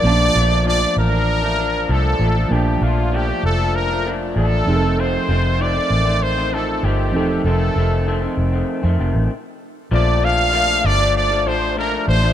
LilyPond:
<<
  \new Staff \with { instrumentName = "Trumpet" } { \time 4/4 \key bes \major \tempo 4 = 97 d''4 d''8 bes'4. a'4 | g'8 f'8 g'8 a'8 bes'8 r8 a'4 | c''4 d''4 c''8 a'8 g'4 | a'4. r2 r8 |
d''8 f''4 d''8 d''8 c''8 bes'8 c''8 | }
  \new Staff \with { instrumentName = "Reed electric piano" } { \time 4/4 \key bes \major <f bes des' d' a''>1 | <f bes d' a''>2.~ <f bes d' a''>8 <f c' ees' aes' a'>8~ | <f c' ees' aes' a'>2.~ <f c' ees' aes' a'>8 <f c' ees' a'>8~ | <f c' ees' a'>2. r4 |
r1 | }
  \new Staff \with { instrumentName = "Clean electric guitar" } { \time 4/4 \key bes \major <bes, f a d'>8 <bes, f a d'>8 <bes, f a d'>16 <f a d'>8 <f d'>8 <f a d'>16 <f d'>8 <bes, f a d'>8 <bes, f a d'>16 <f a d'>16 | <bes, f a d'>8 <bes, f a d'>8 <bes, f a d'>16 <f a d'>8 <f a d'>8 <f a d'>16 <bes, f a d'>8 <f a d'>8 <f, ees a c'>16 <ees a c'>16 | <f, ees a c'>8 <f, ees a c'>8 <f, ees a c'>16 <ees a c'>8 <ees a c'>8 <ees a c'>16 <f, ees a c'>8 <f, ees a c'>8 <f, ees a c'>16 <ees a c'>16 | <f, ees a c'>8 <f, ees a c'>8 <f, ees a c'>16 <ees a c'>8 <ees a c'>8 <ees a c'>16 <f, ees a c'>8 r4 |
<bes, f a d'>8 <bes, f a d'>8 <bes, f a d'>8 <bes, f a d'>16 <f a d'>8 <f a d'>16 <f a d'>8 <bes, f a d'>16 <f a d'>8 <f a d'>16 | }
  \new Staff \with { instrumentName = "Fingered electric bass" } { \clef bass \time 4/4 \key bes \major bes,,8 bes,,4 a,,4. c,8 a,,8 | bes,,8 bes,,4 f,,4. a,,8 f,,8~ | f,,8 f,,4 a,,4. g,,8 e,,8 | f,,8 f,,4 f,,8 r16 f,16 f,,16 a,,16 r4 |
bes,,4. g,,4 a,,4 a,,8 | }
>>